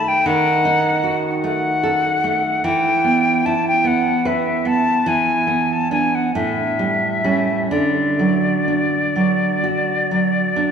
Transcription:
Already playing: nylon-string guitar D#3 A3 A4
0.08 flute G5
0.26 nylon-string guitar D#3, flute F#5
0.65 nylon-string guitar D#4
1.04 nylon-string guitar F#4
1.44 nylon-string guitar A3, flute F#5
1.83 nylon-string guitar A4
2.24 nylon-string guitar A3
2.64 nylon-string guitar E3, flute G5
3.04 nylon-string guitar B3
3.46 nylon-string guitar E4, flute A5
3.68 flute G5
3.84 nylon-string guitar B3, flute F#5
4.25 nylon-string guitar B4, flute E5
4.65 nylon-string guitar B3, flute A5
5.06 nylon-string guitar E3, flute G#5
5.47 nylon-string guitar B3
5.73 flute A5
5.91 nylon-string guitar B3 D4, flute G#5
6.15 flute F#5
6.35 nylon-string guitar A2, flute E5
6.79 nylon-string guitar G3
7.24 nylon-string guitar G3 C#4
7.71 nylon-string guitar D3, flute D5
8.19 nylon-string guitar F#3
8.68 nylon-string guitar D4
9.16 nylon-string guitar F#3
9.64 nylon-string guitar F#4
10.11 nylon-string guitar F#3
10.56 nylon-string guitar D4

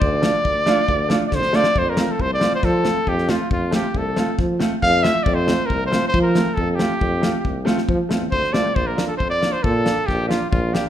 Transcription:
0.00 tuba D2, cornet D5, kick
0.21 upright piano A3 D4 F4, snare
0.45 tuba D2, kick
0.66 upright piano A3 D4 F4, snare
0.88 tuba D2, kick
1.09 upright piano A3 D4 F4, snare
1.27 cornet D5
1.32 tuba D3, cornet C5, kick, snare
1.42 tuba D2, snare
1.53 upright piano A3 D4 F4, cornet D5, snare
1.64 snare
1.75 tuba F2, cornet C5, kick
1.89 cornet A#4
1.96 upright piano A3 C4 F4, snare
2.11 cornet A4
2.19 tuba C2, cornet C5, kick
2.34 cornet D5
2.40 upright piano A3 C4 F4, snare
2.55 cornet C5
2.63 tuba F3, cornet A4, kick, snare
2.83 upright piano A3 C4 F4, snare
3.07 tuba F2, cornet G4, kick
3.18 snare
3.28 upright piano A3 C4 F4, cornet F4, snare
3.51 tuba F2, cornet F4, kick
3.71 upright piano A3 C4 F4, cornet G4, snare
3.94 tuba C2, cornet A4, kick
4.16 upright piano A3 C4 F4, snare
4.39 tuba F3, kick, snare
4.59 upright piano A3 C4 F4, snare
4.83 tuba F2, cornet F5, kick, snare
5.03 upright piano A3 C4 F4, cornet E5, snare
5.24 tuba F2, cornet D5, kick
5.35 cornet C5
5.47 upright piano A3 C4 F4, snare
5.66 tuba C2, cornet A#4, kick
5.87 cornet C5
5.91 upright piano A3 C4 F4, snare
6.08 cornet C5
6.14 tuba F3, kick
6.22 cornet A#4
6.35 upright piano A3 C4 F4, snare
6.54 tuba F2, cornet A4, kick
6.71 cornet G4 A4
6.79 upright piano A3 C4 F4, snare
7.01 tuba F2, kick
7.21 upright piano A3 C4 F4, snare
7.45 tuba C2, kick
7.65 upright piano A3 C4 F4, snare
7.78 snare
7.89 tuba F3, kick
8.09 tuba E2, upright piano A3 C4 F4, snare
8.32 tuba D2, cornet C5, kick
8.44 snare
8.53 tuba C2, upright piano A3 C4 F4, cornet D5, snare
8.75 tuba A#1, cornet C5, kick
8.87 cornet A#4
8.96 upright piano A#3 D4 F4, snare
9.07 cornet A4
9.17 tuba F2, cornet C5, kick
9.30 cornet D5
9.41 upright piano A#3 D4 F4, snare
9.52 cornet C5
9.63 tuba A#2, cornet A4, kick
9.85 upright piano A#3 D4 F4, snare
10.07 tuba A#1, cornet G4, kick, snare
10.28 upright piano A#3 D4 F4, cornet F4, snare
10.51 tuba A#1, cornet F4, kick
10.72 upright piano A#3 D4 F4, cornet G4, snare

